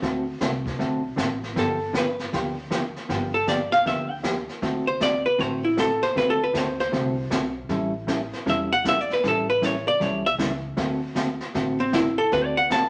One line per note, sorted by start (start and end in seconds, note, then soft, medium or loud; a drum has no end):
0.02 0.33 D2 medium
0.02 0.24 D3 medium
0.02 0.24 A3 medium
0.02 0.24 C4 medium
0.02 0.24 F#4 medium
0.02 0.24 A4 medium
0.02 brush sweep soft
0.02 kick soft
0.02 snare soft
0.41 0.73 C2 medium
0.41 0.52 D3 medium
0.41 0.52 A3 medium
0.41 0.52 C4 medium
0.41 0.53 F#4 medium
0.41 0.53 A4 medium
0.41 kick soft
0.41 snare medium
0.41 hi-hat pedal medium
0.66 kick medium
0.66 snare soft
0.79 1.12 B1 medium
0.79 1.01 D3 medium
0.79 1.01 A3 medium
0.79 1.01 C4 medium
0.79 1.01 F#4 medium
0.79 1.01 A4 medium
0.79 brush sweep soft
0.79 kick soft
0.79 snare soft
1.16 1.50 A1 medium
1.16 1.28 D3 medium
1.16 1.29 A3 medium
1.16 1.29 C4 medium
1.16 1.29 F#4 medium
1.16 1.29 A4 medium
1.16 kick soft
1.16 snare medium
1.16 hi-hat pedal medium
1.43 snare soft
1.56 2.17 G1 medium
1.56 1.77 D3 medium
1.56 1.78 F3 medium
1.56 1.78 B3 medium
1.56 1.78 D4 medium
1.56 1.78 G4 medium
1.56 1.93 A4 medium
1.56 brush sweep medium
1.56 kick soft
1.56 snare soft
1.93 2.05 D3 medium
1.93 2.05 F3 medium
1.93 2.05 B3 medium
1.93 2.05 D4 medium
1.93 2.06 G4 medium
1.93 kick soft
1.93 snare medium
1.93 hi-hat pedal medium
1.98 2.31 B4 medium
2.19 snare soft
2.33 2.94 D2 medium
2.33 2.55 D3 medium
2.33 2.54 F3 medium
2.33 2.55 B3 medium
2.33 2.55 D4 medium
2.33 2.55 G4 medium
2.33 brush sweep medium
2.33 kick soft
2.33 snare soft
2.71 2.82 D3 medium
2.71 2.82 F3 medium
2.71 2.82 B3 medium
2.71 2.83 D4 medium
2.71 2.83 G4 medium
2.71 kick soft
2.71 snare medium
2.71 hi-hat pedal medium
2.96 snare soft
3.09 3.71 G1 medium
3.09 3.31 D3 medium
3.09 3.31 F3 medium
3.09 3.31 B3 medium
3.09 3.31 D4 medium
3.09 3.31 G4 medium
3.09 brush sweep medium
3.09 kick soft
3.09 snare soft
3.34 3.47 A4 medium
3.47 3.59 D3 medium
3.47 3.59 F3 medium
3.47 3.59 B3 medium
3.47 3.59 D4 medium
3.47 3.59 G4 medium
3.47 3.72 D5 medium
3.47 kick soft
3.47 snare medium
3.47 hi-hat pedal medium
3.72 3.85 F5 loud
3.72 snare soft
3.85 4.47 D2 medium
3.85 4.07 D3 medium
3.85 4.08 F3 medium
3.85 4.08 B3 medium
3.85 4.08 D4 medium
3.85 4.08 G4 medium
3.85 4.10 E5 medium
3.85 brush sweep medium
3.85 kick soft
3.85 snare soft
4.10 4.18 G5 loud
4.23 4.35 D3 medium
4.23 4.35 F3 medium
4.23 4.35 B3 medium
4.23 4.36 D4 medium
4.23 4.36 G4 medium
4.23 kick soft
4.23 snare medium
4.23 hi-hat pedal medium
4.49 snare soft
4.62 5.24 D2 medium
4.62 4.84 D3 medium
4.62 4.84 A3 medium
4.62 4.85 C4 medium
4.62 4.85 F#4 medium
4.62 4.85 A4 medium
4.62 brush sweep soft
4.62 kick soft
4.62 snare soft
4.87 5.00 C5 medium
5.00 5.12 D3 medium
5.00 5.12 A3 medium
5.00 5.13 C4 medium
5.00 5.13 F#4 medium
5.00 5.13 A4 medium
5.00 5.25 D5 loud
5.00 kick soft
5.00 snare medium
5.00 hi-hat pedal medium
5.26 5.41 B4 medium
5.38 6.00 A1 medium
5.38 5.61 D3 medium
5.38 5.61 A3 medium
5.38 5.61 C4 medium
5.38 5.61 F#4 medium
5.38 5.61 A4 medium
5.38 5.64 C5 medium
5.38 brush sweep soft
5.38 kick soft
5.38 snare soft
5.65 5.77 E4 medium
5.77 5.89 D3 medium
5.77 5.89 A3 medium
5.77 5.89 C4 medium
5.77 5.89 F#4 medium
5.77 5.90 A4 medium
5.77 6.03 A4 medium
5.77 kick soft
5.77 snare medium
5.77 hi-hat pedal medium
6.02 6.16 C5 loud
6.02 snare soft
6.16 6.47 D2 medium
6.16 6.38 D3 medium
6.16 6.38 A3 medium
6.16 6.38 C4 medium
6.16 6.38 F#4 medium
6.16 6.38 A4 medium
6.16 6.29 B4 medium
6.16 brush sweep soft
6.16 kick soft
6.16 snare soft
6.30 6.42 A4 medium
6.44 6.58 B4 medium
6.54 6.87 D2 medium
6.54 6.66 D3 medium
6.54 6.66 A3 medium
6.54 6.66 C4 medium
6.54 6.66 F#4 medium
6.54 6.66 A4 medium
6.54 kick soft
6.54 snare medium
6.54 hi-hat pedal medium
6.58 6.79 C5 medium
6.80 7.66 C5 medium
6.80 snare soft
6.92 7.26 C2 medium
6.92 7.14 D3 medium
6.92 7.15 A3 medium
6.92 7.15 C4 medium
6.92 7.15 F#4 medium
6.92 7.15 A4 medium
6.92 brush sweep medium
6.92 kick soft
6.92 snare soft
7.30 7.64 B1 medium
7.30 7.43 D3 medium
7.30 7.43 A3 medium
7.30 7.43 C4 medium
7.30 7.43 F#4 medium
7.30 7.43 A4 medium
7.30 kick soft
7.30 snare medium
7.30 hi-hat pedal medium
7.69 8.31 A1 medium
7.69 7.92 E3 medium
7.69 7.92 G3 medium
7.69 7.92 C#4 medium
7.69 7.92 E4 medium
7.69 7.92 A4 medium
7.69 brush sweep medium
7.69 kick soft
7.69 snare soft
8.07 8.19 E3 medium
8.07 8.20 G3 medium
8.07 8.20 C#4 medium
8.07 8.20 E4 medium
8.07 8.20 A4 medium
8.07 kick soft
8.07 snare medium
8.07 hi-hat pedal medium
8.33 snare soft
8.46 9.08 E1 medium
8.46 8.68 E3 medium
8.46 8.69 G3 medium
8.46 8.69 C#4 medium
8.46 8.69 E4 medium
8.46 8.69 A4 medium
8.46 8.72 E5 medium
8.46 brush sweep soft
8.46 kick soft
8.46 snare soft
8.73 8.85 F#5 loud
8.84 8.97 E3 medium
8.84 8.97 G3 medium
8.84 8.97 C#4 medium
8.84 8.97 E4 medium
8.84 8.97 A4 medium
8.84 kick soft
8.84 snare medium
8.84 hi-hat pedal medium
8.89 9.01 E5 loud
9.01 9.12 D5 medium
9.10 9.25 B4 medium
9.10 snare soft
9.24 9.85 A1 medium
9.24 9.46 E3 medium
9.24 9.46 G3 medium
9.24 9.46 C#4 medium
9.24 9.46 E4 medium
9.24 9.46 A4 medium
9.24 brush sweep soft
9.24 kick soft
9.24 snare medium
9.28 9.49 A4 medium
9.50 9.64 B4 medium
9.61 9.74 E3 medium
9.61 9.74 G3 medium
9.61 9.74 C#4 medium
9.61 9.74 E4 medium
9.61 9.74 A4 medium
9.61 9.87 C#5 medium
9.61 kick soft
9.61 snare medium
9.61 hi-hat pedal medium
9.88 10.02 D5 loud
10.00 10.34 B1 medium
10.00 10.22 E3 medium
10.00 10.23 G3 medium
10.00 10.23 C#4 medium
10.00 10.23 E4 medium
10.00 10.23 A4 medium
10.00 10.26 C#5 medium
10.00 brush sweep soft
10.00 kick soft
10.00 snare soft
10.26 10.34 E5 loud
10.38 10.72 C#2 medium
10.38 10.51 E3 medium
10.38 10.51 G3 medium
10.38 10.51 C#4 medium
10.38 10.51 E4 medium
10.38 10.51 A4 medium
10.38 kick soft
10.38 snare medium
10.38 hi-hat pedal medium
10.77 11.39 D2 medium
10.77 10.99 D3 medium
10.77 10.99 A3 medium
10.77 11.00 C4 medium
10.77 11.00 F#4 medium
10.77 11.00 A4 medium
10.77 brush sweep soft
10.77 kick soft
10.77 snare medium
11.15 11.27 D3 medium
11.15 11.28 A3 medium
11.15 11.28 C4 medium
11.15 11.28 F#4 medium
11.15 11.28 A4 medium
11.15 kick soft
11.15 snare medium
11.15 hi-hat pedal medium
11.40 snare soft
11.54 12.16 A1 medium
11.54 11.77 D3 medium
11.54 11.77 A3 medium
11.54 11.77 C4 medium
11.54 11.77 F#4 medium
11.54 11.77 A4 medium
11.54 brush sweep soft
11.54 kick soft
11.54 snare soft
11.80 11.93 C4 medium
11.93 12.05 D3 medium
11.93 12.05 A3 medium
11.93 12.05 C4 medium
11.93 12.18 E4 medium
11.93 12.05 F#4 medium
11.93 12.05 A4 medium
11.93 kick soft
11.93 snare medium
11.93 hi-hat pedal medium
12.18 12.31 A4 loud
12.32 12.89 D2 loud
12.32 12.54 D3 medium
12.32 12.54 A3 medium
12.32 12.54 C4 medium
12.32 12.55 F#4 medium
12.32 12.55 A4 medium
12.32 12.45 B4 medium
12.32 brush sweep medium
12.32 kick soft
12.32 snare soft
12.45 12.58 D5 loud
12.57 12.70 F#5 medium
12.70 12.82 D3 medium
12.70 12.82 A3 medium
12.70 12.82 C4 medium
12.70 12.83 F#4 medium
12.70 12.83 A4 medium
12.70 12.89 A5 loud
12.70 kick soft
12.70 snare medium
12.70 hi-hat pedal medium